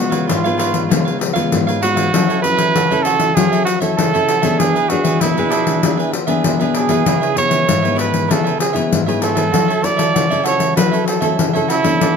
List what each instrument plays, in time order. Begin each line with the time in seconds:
Already playing: nylon-string guitar C#3 G#3 B3
0.00 nylon-string guitar F4, trumpet F#4
0.10 cavaquinho B4 C#5 F5, pandeiro
0.27 nylon-string guitar G#2, cavaquinho F4 B4 C#5 F5, trumpet F4, pandeiro
0.44 nylon-string guitar G#3 B3 F4, cavaquinho B4 C#5 F5, pandeiro
0.58 cavaquinho F4 B4 C#5 F5, pandeiro
0.74 pandeiro
0.89 nylon-string guitar C#3 G#3 B3 F4, cavaquinho F4 B4 C#5 F5, pandeiro
1.05 cavaquinho B4 C#5 F5, pandeiro
1.19 muted cavaquinho stroke, pandeiro
1.33 nylon-string guitar G#3 B3 F4, cavaquinho B4 C#5 F5, pandeiro
1.52 nylon-string guitar G#2, pandeiro
1.67 cavaquinho B4 C#5 F5, pandeiro
1.81 nylon-string guitar G#3 B3 F4, cavaquinho F4 B4 C#5 F5, trumpet F#4, pandeiro
1.96 cavaquinho B4 C#5 F5, pandeiro
2.13 nylon-string guitar F#3 C#4 E4 A4, cavaquinho F#4 A4 C#5 E5, pandeiro
2.28 cavaquinho A4 C#5 E5, pandeiro
2.42 nylon-string guitar C#4 E4 A4, trumpet B4, muted cavaquinho stroke, pandeiro
2.57 cavaquinho A4 C#5 E5, pandeiro
2.75 nylon-string guitar C#3, cavaquinho F#4 A4 C#5 E5, pandeiro
2.90 nylon-string guitar C#4 E4 A4, cavaquinho A4 C#5 E5, pandeiro
3.03 cavaquinho F#4 A4 C#5 E5, trumpet A4, pandeiro
3.20 pandeiro
3.35 nylon-string guitar F#3 C#4 E4, cavaquinho F#4 A4 C#5 E5, trumpet G#4, pandeiro
3.52 cavaquinho A4 C#5 E5, pandeiro
3.65 trumpet F#4, muted cavaquinho stroke, pandeiro
3.80 nylon-string guitar C#4 E4 A4, cavaquinho A4 C#5 E5, pandeiro
3.97 nylon-string guitar C#3, trumpet A4, pandeiro
4.13 nylon-string guitar C#4 E4 A4, cavaquinho A4 C#5 E5, pandeiro
4.28 cavaquinho F#4 A4 C#5 E5, pandeiro
4.42 nylon-string guitar B3 D4 G#4, cavaquinho A4 C#5 E5, pandeiro
4.59 nylon-string guitar E3, cavaquinho D4 G#4 B4 E5, trumpet G#4, pandeiro
4.75 cavaquinho G#4 B4 E5, pandeiro
4.89 nylon-string guitar B3 D4 G#4, trumpet F#4, muted cavaquinho stroke, pandeiro
5.04 cavaquinho G#4 B4 E5, pandeiro
5.21 nylon-string guitar B2, cavaquinho D4 G#4 B4 E5, trumpet E4, pandeiro
5.37 nylon-string guitar B3 D4 G#4, cavaquinho G#4 B4 E5, pandeiro
5.50 cavaquinho D4 G#4 B4 E5, pandeiro
5.67 pandeiro
5.82 nylon-string guitar E3 B3 D4 G#4, cavaquinho D4 G#4 B4 E5, pandeiro
5.97 cavaquinho G#4 B4 E5, pandeiro
6.12 muted cavaquinho stroke, pandeiro
6.27 nylon-string guitar B3 D4 G#4, cavaquinho G#4 B4 E5, pandeiro
6.44 nylon-string guitar B2, pandeiro
6.60 nylon-string guitar B3 D4 G#4, cavaquinho G#4 B4 E5, pandeiro
6.74 cavaquinho D4 G#4 B4 E5, trumpet G#4, pandeiro
6.89 nylon-string guitar B3 E4 G#4, cavaquinho G#4 B4 E5, pandeiro
7.05 nylon-string guitar C#3, cavaquinho E4 B4 C#5 E5, pandeiro
7.21 cavaquinho B4 C#5 E5, pandeiro
7.36 nylon-string guitar B3 E4 G#4, trumpet C#5, muted cavaquinho stroke, pandeiro
7.49 cavaquinho B4 C#5 E5, pandeiro
7.66 nylon-string guitar G#2, cavaquinho E4 B4 C#5 E5, pandeiro
7.82 nylon-string guitar B3 E4 G#4, cavaquinho B4 C#5 E5, pandeiro
7.96 cavaquinho E4 B4 C#5 E5, pandeiro
8.00 trumpet B4
8.14 pandeiro
8.28 nylon-string guitar C#3 B3 E4 G#4, cavaquinho E4 B4 C#5 E5, pandeiro
8.32 trumpet A4
8.44 cavaquinho B4 C#5 E5, pandeiro
8.58 trumpet G#4, muted cavaquinho stroke, pandeiro
8.73 nylon-string guitar B3 E4 G#4, cavaquinho B4 C#5 E5, pandeiro
8.91 nylon-string guitar G#2, pandeiro
9.06 nylon-string guitar B3 E4 G#4, cavaquinho B4 C#5 E5, pandeiro
9.20 cavaquinho E4 B4 C#5 E5, trumpet A4, pandeiro
9.35 cavaquinho B4 C#5 E5, pandeiro
9.52 nylon-string guitar F#3 C#4 E4 A4, cavaquinho F#4 A4 C#5 E5, pandeiro
9.68 cavaquinho A4 C#5 E5, pandeiro
9.82 nylon-string guitar E4 A4, trumpet D5, muted cavaquinho stroke, pandeiro
9.97 cavaquinho A4 C#5 E5, pandeiro
10.14 nylon-string guitar C#3, cavaquinho F#4 A4 C#5 E5, pandeiro
10.30 nylon-string guitar C#4 E4 A4, cavaquinho A4 C#5 E5, pandeiro
10.43 cavaquinho F#4 A4 C#5 E5, trumpet C#5, pandeiro
10.60 pandeiro
10.76 nylon-string guitar F#3 C#4 E4 A4, cavaquinho F#4 A4 C#5 E5, trumpet B4, pandeiro
10.92 cavaquinho A4 C#5 E5, pandeiro
11.05 trumpet A4, muted cavaquinho stroke, pandeiro
11.21 nylon-string guitar C#4 E4 A4, cavaquinho A4 C#5 E5, pandeiro
11.39 nylon-string guitar C#3, pandeiro
11.53 nylon-string guitar C#4 E4 A4, cavaquinho A4 C#5 E5, pandeiro
11.68 trumpet E4, cavaquinho F#4 A4 C#5 E5, pandeiro
11.83 nylon-string guitar B3 D4 A4, cavaquinho A4 C#5 E5, pandeiro
12.00 nylon-string guitar E3, cavaquinho E4 A4 B4 D5, pandeiro